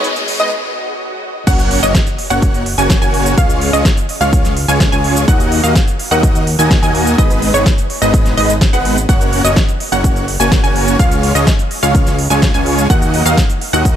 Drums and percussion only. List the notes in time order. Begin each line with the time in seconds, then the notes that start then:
0.04 closed hi-hat
0.16 closed hi-hat
0.28 open hi-hat
0.40 closed hi-hat
1.47 kick, closed hi-hat, crash, shaker
1.59 closed hi-hat, shaker
1.71 open hi-hat
1.83 closed hi-hat, shaker
1.95 kick, snare, closed hi-hat, shaker
2.07 closed hi-hat, shaker
2.18 open hi-hat
2.30 closed hi-hat, shaker
2.42 kick, closed hi-hat, shaker
2.54 closed hi-hat, shaker
2.66 open hi-hat
2.78 closed hi-hat, shaker
2.90 kick, snare, closed hi-hat, shaker
3.02 closed hi-hat, shaker
3.14 open hi-hat
3.26 closed hi-hat, shaker
3.38 kick, closed hi-hat, shaker
3.49 closed hi-hat, shaker
3.61 open hi-hat
3.73 closed hi-hat, shaker
3.85 kick, snare, closed hi-hat, shaker
3.97 closed hi-hat, shaker
4.09 open hi-hat
4.21 closed hi-hat, shaker
4.33 kick, closed hi-hat, shaker
4.45 snare, closed hi-hat, shaker
4.57 open hi-hat
4.69 closed hi-hat, shaker
4.80 kick, snare, closed hi-hat, shaker
4.92 closed hi-hat, shaker
5.04 open hi-hat
5.16 closed hi-hat, shaker
5.28 kick, closed hi-hat, shaker
5.40 closed hi-hat, shaker
5.52 open hi-hat
5.64 closed hi-hat, shaker
5.75 kick, snare, closed hi-hat, shaker
5.88 closed hi-hat, shaker
5.99 open hi-hat
6.12 shaker
6.23 kick, closed hi-hat, shaker
6.35 closed hi-hat, shaker
6.47 open hi-hat
6.59 closed hi-hat, shaker
6.71 kick, snare, closed hi-hat, shaker
6.83 closed hi-hat, shaker
6.95 open hi-hat
7.07 closed hi-hat, shaker
7.18 kick, closed hi-hat, shaker
7.30 closed hi-hat, shaker
7.42 open hi-hat
7.54 closed hi-hat, shaker
7.66 kick, snare, closed hi-hat, shaker
7.78 closed hi-hat, shaker
7.90 open hi-hat
8.02 closed hi-hat, shaker
8.14 kick, closed hi-hat, shaker
8.25 snare, closed hi-hat, shaker
8.37 open hi-hat
8.49 closed hi-hat, shaker
8.61 kick, snare, closed hi-hat, shaker
8.73 closed hi-hat, shaker
8.85 open hi-hat
8.97 closed hi-hat, shaker
9.09 kick, closed hi-hat, shaker
9.21 closed hi-hat, shaker
9.33 open hi-hat
9.45 closed hi-hat, shaker
9.56 kick, snare, closed hi-hat, shaker
9.68 closed hi-hat, shaker
9.80 open hi-hat
9.92 closed hi-hat, shaker
10.04 kick, closed hi-hat, shaker
10.16 closed hi-hat, shaker
10.28 open hi-hat
10.40 closed hi-hat, shaker
10.52 kick, snare, closed hi-hat, shaker
10.64 closed hi-hat, shaker
10.76 open hi-hat
10.88 closed hi-hat, shaker
10.99 kick, closed hi-hat, shaker
11.11 closed hi-hat, shaker
11.23 open hi-hat
11.35 closed hi-hat, shaker
11.47 kick, snare, closed hi-hat, shaker
11.59 closed hi-hat, shaker
11.71 open hi-hat
11.83 closed hi-hat, shaker
11.95 kick, closed hi-hat, shaker
12.06 snare, closed hi-hat, shaker
12.18 open hi-hat
12.30 closed hi-hat, shaker
12.42 kick, snare, closed hi-hat, shaker
12.54 closed hi-hat, shaker
12.66 open hi-hat
12.78 closed hi-hat, shaker
12.90 kick, closed hi-hat, shaker
13.02 closed hi-hat, shaker
13.14 open hi-hat
13.26 closed hi-hat, shaker
13.37 kick, snare, closed hi-hat, shaker
13.50 closed hi-hat, shaker
13.61 open hi-hat
13.73 closed hi-hat, shaker
13.85 kick, closed hi-hat, shaker